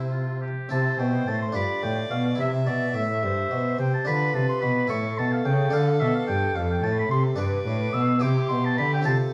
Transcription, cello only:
Already playing: C3
0.71 C3
1.00 B2
1.28 A2
1.55 G2
1.84 A2
2.12 B2
2.40 C3
2.68 B2
2.96 A2
3.24 G2
3.51 B2
3.79 C3
4.07 D3
4.35 C3
4.63 B2
4.91 A2
5.19 B2
5.47 C#3
5.74 D3
6.02 B2
6.29 G2
6.57 F2
6.84 A2
7.11 C3
7.39 G2
7.67 A2
7.95 B2
8.22 C3
8.51 B2
8.79 D3
9.06 C3

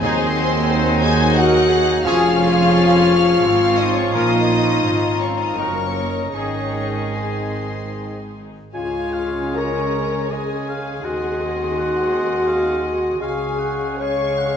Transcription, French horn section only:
0.02 C4
1.04 G#4
1.38 F#4
2.06 F4
3.80 D#4
3.98 C#4
4.16 D#4
5.23 C#4
5.39 D#4
5.56 C#4
6.35 C#4
7.18 C4
8.74 F4
9.56 A#4
10.32 G#4
11.04 F#4
13.20 G#4
13.98 C#5

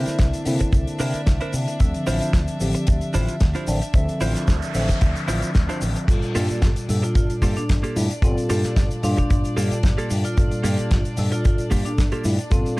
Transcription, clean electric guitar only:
Already playing: D4 E4 A#4 C5
0.61 muted clean electric guitar stroke
0.73 muted clean electric guitar stroke
1.00 D4 E4 A#4 C5
1.41 D4 E4 A#4 C5
1.68 muted clean electric guitar stroke
2.07 D4 E4 F4 C5
2.75 muted clean electric guitar stroke
2.87 muted clean electric guitar stroke
3.14 D4 E4 F4 C5
3.55 D4 E4 F4 C5
3.82 muted clean electric guitar stroke
4.21 D4 E4 F4 C5
4.89 muted clean electric guitar stroke
5.01 muted clean electric guitar stroke
5.28 D4 E4 F4 C5
5.69 D4 E4 F4 C5
5.96 muted clean electric guitar stroke
6.35 A#3 F4 G4 A4
7.03 muted clean electric guitar stroke
7.15 muted clean electric guitar stroke
7.42 A#3 F4 G4 A4
7.83 A#3 F4 G4 A4
8.10 muted clean electric guitar stroke
8.50 A#3 F4 G4 A4
9.17 muted clean electric guitar stroke
9.30 muted clean electric guitar stroke
9.57 A#3 F4 G4 A4
9.98 A#3 F4 G4 A4
10.25 muted clean electric guitar stroke
10.64 A#3 F4 G4 A4
11.32 muted clean electric guitar stroke
11.44 muted clean electric guitar stroke
11.71 A#3 F4 G4 A4
12.12 A#3 F4 G4 A4
12.39 muted clean electric guitar stroke

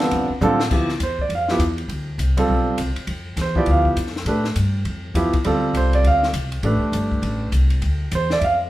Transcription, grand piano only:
Already playing: D3 G3 C4 F4 A4
0.41 D3 G3 C4 F4 A4
0.70 F3 B3 E4 G4
1.03 C5
1.21 D5
1.35 F5
1.49 F3 B3 E4 G4
2.37 G3 C4 F4 A4
3.41 C5
3.56 F3 B3 E4 G4 D5
3.71 F5
4.27 A3 D4 G4 B4
5.15 F3 B3 E4 G4
5.45 G3 C4 F4 A4
5.77 C5
5.95 D5
6.07 F5
6.64 A3 D4 G4 B4
8.15 C5
8.32 D5
8.40 E5
8.44 F5

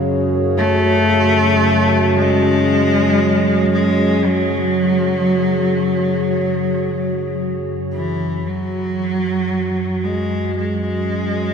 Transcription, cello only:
0.57 A3
2.16 G#3
3.72 G#3
4.26 F#3
7.93 E3
8.46 F#3
10.04 G#3
10.57 G#3

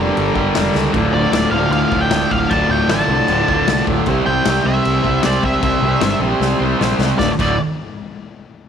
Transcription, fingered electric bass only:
0.17 G1
0.35 G1
0.56 F1
0.75 C#2
0.94 D1
1.13 D1
1.32 D1
1.51 D1
1.70 D2
1.92 D1
2.10 D1
2.32 D1
2.52 D1
2.69 D1
2.88 A1
3.08 C2
3.28 D1
3.49 D1
3.67 C2
3.87 D1
4.07 C2
4.27 C2
4.46 C2
4.65 C2
4.86 C2
5.05 C2
5.25 C2
5.44 C2
5.63 C2
5.82 C2
6.00 G1
6.20 A#1
6.40 C2
6.60 C2
6.80 A#1
6.99 C2
7.19 D1
7.39 D1

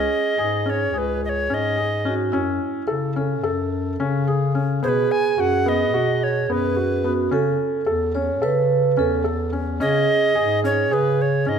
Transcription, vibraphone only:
Already playing: G#4
2.06 F#4
2.32 E4
3.17 A4
4.84 G#4
7.05 F#4
7.33 A4
8.15 C#5
8.43 B4
8.99 A4
9.82 G#4

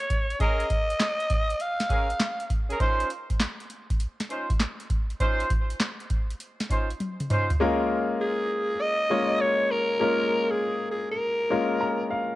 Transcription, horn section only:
0.40 C#4 G#4 A#4
1.90 C#4 G#4 A#4
2.70 C#4 G#4 A#4
2.80 C#4 D#4 F4 C5
4.30 C#4 D#4 F4 C5
5.20 C#4 D#4 F4 C5
6.70 C#4 D#4 F4 C5
7.30 C#4 D#4 F4 C5

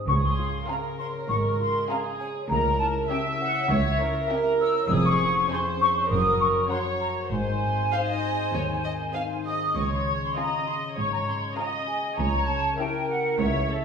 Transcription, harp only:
Already playing: G#4
0.08 C#3
0.38 F4
0.69 G#4
0.99 C#5
1.29 G#3
1.60 F4
1.90 G#4
2.20 C#5
2.50 C#3
2.80 E4
3.11 G4
3.41 C#5
3.71 C#4
4.01 E4
4.31 G4
4.61 C#5
4.91 F2
5.21 C#4
5.51 G#4
5.81 C#5
6.11 F#2
6.41 C#4
6.71 F#4
7.01 A#4
7.32 G#2
7.62 C4
7.92 D#4
8.23 G#4
8.54 D#3
8.84 C4
9.14 D#4
9.45 G#4
9.76 C#3
10.06 C#4
10.37 F4
10.67 G#4
10.97 G#3
11.27 C#4
11.58 F4
11.88 G#4
12.18 C#3
12.48 C#4
12.78 E4
13.09 G4
13.39 C#3
13.70 C#4

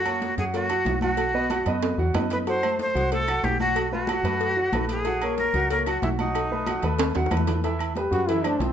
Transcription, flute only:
Already playing: F#4
0.38 G#4
0.54 F#4
1.02 F#4
2.32 B4
2.48 C5
2.81 C5
3.13 A4
3.44 G4
3.61 F#4
3.93 F#4
4.91 G#4
5.38 A#4
5.70 A#4
5.86 F#4
6.03 E4
6.18 D#4

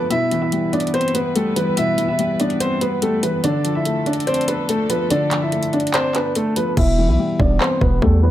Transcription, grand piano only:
0.10 E4 E5
0.42 E4 E5
0.73 D4 D5
0.94 C4 C5
1.15 B3 B4
1.35 A3 A4
1.56 B3 B4
1.77 E4 E5
2.08 E4 E5
2.40 D4 D5
2.60 C4 C5
2.81 B3 B4
3.02 A3 A4
3.23 B3 B4
3.44 D4 D5
3.75 E4 E5
4.06 D4 D5
4.27 C4 C5
4.48 B3 B4
4.69 A3 A4
4.90 B3 B4
5.10 D4 D5
5.42 E4 E5
5.73 D4 D5
5.94 C4 C5
6.15 B3 B4
6.36 A3 A4
6.57 B3 B4
6.77 E4 E5
7.08 E4 E5
7.40 D4 D5
7.61 C4 C5
7.82 B3 B4
8.02 A3 A4
8.23 B3 B4

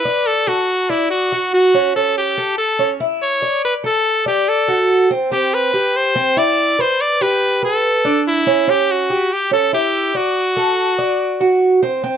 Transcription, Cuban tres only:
0.05 D5
0.47 A4
0.90 D5
1.32 F#4
1.74 C#4
1.96 C#4
2.38 A4
2.79 C#4
3.00 E4
3.42 D5
3.84 A4
4.26 D5
4.68 F#4
5.11 C4
5.32 C4
5.74 G4
6.15 C4
6.37 E4
6.79 B4
7.21 G4
7.63 B4
8.05 D4
8.47 C#4
8.68 C#4
9.10 G4
9.51 C#4
9.73 E4
10.15 D5
10.57 A4
10.99 D5
11.40 F#4
11.83 C4
12.03 C4

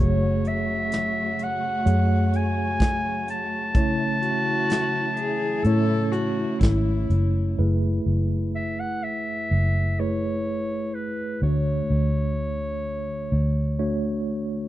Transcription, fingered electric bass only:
0.00 F#1
1.86 F#2
3.75 A1
5.65 A2
6.61 G#1
7.10 F#1
7.59 F#1
8.06 F#1
9.51 F#1
11.42 D2
11.90 D2
13.32 D2

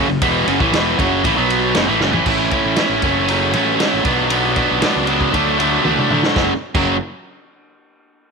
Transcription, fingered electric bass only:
0.08 F#1
0.21 E1
0.47 F#1
0.60 A1
0.72 E1
0.99 F#1
1.24 A1
1.37 B1
1.75 F#1
1.87 A1
2.00 F#1
2.13 A1
2.26 A1
2.64 A1
2.89 A1
3.03 F#1
3.54 A1
3.93 A1
4.05 B1
4.71 B1
4.96 C#2
5.34 D2
5.85 D2
6.12 D3
6.36 F#1
6.75 F#1

